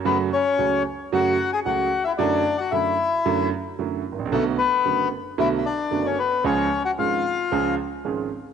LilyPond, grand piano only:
\new Staff \with { instrumentName = "Grand piano" } { \clef bass \time 4/4 \key fis \minor \tempo 4 = 112 <fis, cis fis a fis'>8 r8 <cis, cis fis a fis'>8 r8 <fis, cis fis a fis'>8 r8 <cis, cis fis a fis'>8 r8 | <fis, d fis a e'>8 r8 <fis, d fis a e'>8 r8 <fis, d fis a e'>8 r8 <fis, d fis a e'>8 r32 gis,,32 a,,32 ais,,32 | <b,, b, d a b fis'>8 r8 <fis,, fis, d a b fis'>8 r8 <b,, b, d a b fis'>8 r8 <fis,, fis, d a b fis'>8 r8 | <cis, cis eis gis cis' gis'>8 r8 <gis,, gis, eis gis cis' gis'>8 r8 <cis, cis eis gis cis' gis'>8 r8 <gis,, gis, eis gis cis' gis'>8 r8 | }